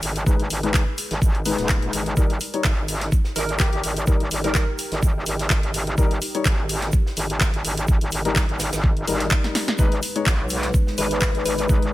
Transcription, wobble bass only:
0.03 G#1
0.26 G#1
0.39 G#1
0.50 G#1
1.11 G#1
1.22 G#1
1.58 D#1
1.93 G#1
2.17 G#1
2.65 G#1
3.36 G#1
3.60 A#1
3.73 G#1
3.84 G#1
4.07 G#1
4.20 G#1
4.31 G#1
4.92 G#1
5.26 G#1
5.50 G#1
5.98 G#1
6.45 G#1
7.17 G#1
7.41 A#1
7.54 G#1
7.65 G#1
7.88 G#1
8.01 G#1
8.12 G#1
8.49 G#1
8.73 G#1
9.07 G#1
9.79 G#1
10.26 B1
10.98 G#1
11.22 A#1
11.35 G#1
11.46 G#1
11.69 G#1
11.82 G#1

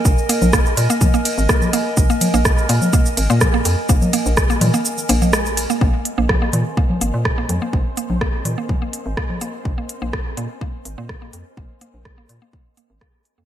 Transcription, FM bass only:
0.05 A#1
0.42 A#1
0.77 A#2
1.38 G#1
1.97 A#1
2.34 A#1
2.69 A#2
3.17 G#1
3.30 A#2
3.65 F2
3.89 A#1
4.26 A#1
4.61 A#2
5.09 A#1
5.81 A#1
6.18 A#1
6.53 A#2
7.01 G#1
7.14 A#2
7.49 F2
7.73 A#1
8.10 A#1
8.45 A#2
9.06 G#1
9.65 A#1
10.02 A#1
10.37 A#2
10.85 G#1
10.98 A#2
11.33 F2
11.57 A#1
11.94 A#1
12.29 A#2
12.90 G#1
13.38 F2

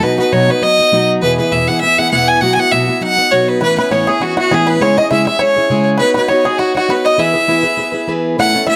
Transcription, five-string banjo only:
3.61 B4
3.78 B4
3.91 C#5
4.07 G#4
4.21 F#4
4.37 F#4
4.51 G#4
4.67 B4
4.82 C#5
4.98 D#5
5.11 E5
5.27 E5
5.39 C#5
5.98 B4
6.14 B4
6.28 C#5
6.45 G#4
6.59 F#4
6.77 F#4
6.90 B4
7.06 D#5
7.19 E5
8.40 F#5
8.67 E5

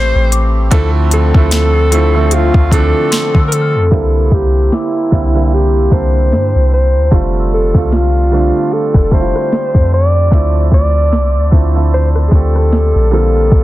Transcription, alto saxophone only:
Already playing: C5
0.74 A4
1.14 A4
2.34 F4
2.73 A4
3.48 A#4
3.54 A4
4.34 G4
4.74 E4
5.54 G4
5.93 C5
6.74 C5
7.53 A4
7.93 F4
8.73 A4
9.13 C5
9.94 D5
10.74 D5
11.94 C5
12.28 G#4
12.34 A4
13.14 A4

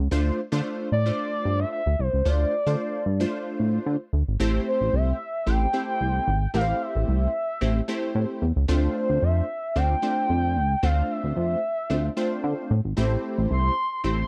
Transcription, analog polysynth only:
0.11 A3 D4 F4 C5
0.52 A3 D4 F4 C5
1.05 A3 D4 F4 C5
2.25 A3 D4 F4 C5
2.66 A3 D4 F4 C5
3.20 A3 D4 F4 C5
4.40 A3 C4 E4 G4 C5
5.46 A3 C4 E4 G4 C5
5.73 A3 C4 E4 G4 C5
6.54 A3 C4 E4 G4 A#4
6.61 C5
7.61 A3 C4 E4 G4 C5
7.88 A3 C4 E4 G4 C5
8.68 A3 C4 D4 F4 C5
9.76 A3 C4 D4 F4 C5
10.02 A3 C4 D4 F4 C5
10.83 A3 C4 D4 F4 C5
11.90 A3 C4 D4 F4 C5
12.17 A3 C4 D4 F4 C5
12.97 A3 C4 E4 G4 C5
14.04 A3 C4 E4 G4 C5

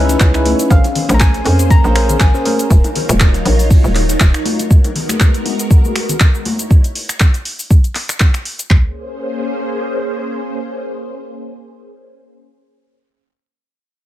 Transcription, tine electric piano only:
Already playing: C#4 D#4 E4 B4
0.34 C#4 D#4 E4 B4
0.70 C#4 G#4 A#4
1.09 C#4 G#4 A#4 C5
1.45 C#4 G#4 A#4 C5
1.84 C#4 G#4 A#4 C5
1.95 C#4 G#4 A#4 C5
2.34 C#4 G#4 A#4 C5
2.45 C#4 G#4 A#4 C5

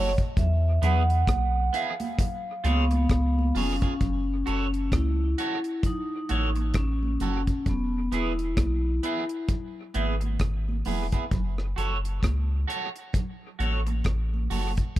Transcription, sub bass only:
Already playing: F#1
0.37 E2
0.82 E2
1.28 B1
2.64 C#2
3.09 C#2
3.55 F1
4.01 F#1
4.48 F#1
4.92 C#2
6.30 A1
6.75 A1
7.21 F#1
7.66 E1
8.12 E1
8.57 B1
9.95 G#1
10.40 G#1
10.87 E1
11.32 F#1
11.77 F#1
12.23 C#2
13.59 A1
14.05 A1
14.51 F#1

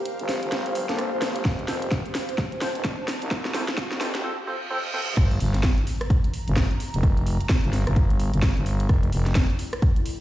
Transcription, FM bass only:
0.19 G1
0.43 G1
0.89 G1
1.12 G1
1.45 F1
1.68 F1
2.75 F1
3.22 C2
3.92 F1
4.15 F1
5.17 G1
5.40 G1
6.47 G1
6.94 F1
7.64 G1
7.87 G1
8.33 G1
8.57 G1
8.89 F1
9.13 F1

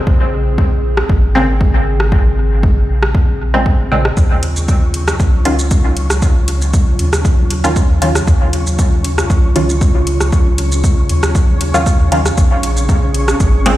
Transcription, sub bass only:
0.07 A#1
1.09 G#1
2.89 A#1
3.79 A#1
4.17 D#2
5.20 C#2
6.99 D#2
7.90 D#2
8.27 D#2
9.30 C#2
11.09 D#2
12.00 D#2
12.38 A#1
13.40 G#1

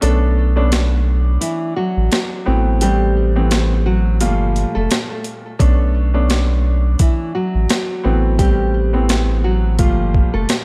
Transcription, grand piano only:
0.01 A3 B3 C#4 D4
0.56 A3 B3 C#4 D4
2.46 E3 A3 B3 C4
2.82 G3 A3 B3 C4
3.35 E3 A3 B3 C4
4.20 A#2 G3 A3 F4
5.59 A3 B3 C#4 D4
6.14 A3 B3 C#4 D4
8.04 E3 A3 B3 C4
8.40 G3 A3 B3 C4
8.93 E3 A3 B3 C4
9.78 A#2 G3 A3 F4

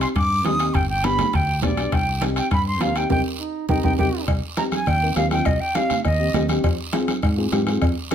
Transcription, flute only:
0.02 C6
0.16 D6
0.45 D#6
0.74 G5
0.89 G5
1.04 B5
1.35 G5
1.64 D5
1.93 G5
2.38 G5
2.52 B5
2.67 C6
2.82 F5
2.97 G5
3.11 G5
3.69 G5
3.84 G5
3.99 G5
4.58 A#5
4.74 G#5
4.88 G5
5.17 F5
5.32 G5
5.46 D#5
5.60 G5
5.75 F5
6.06 D#5

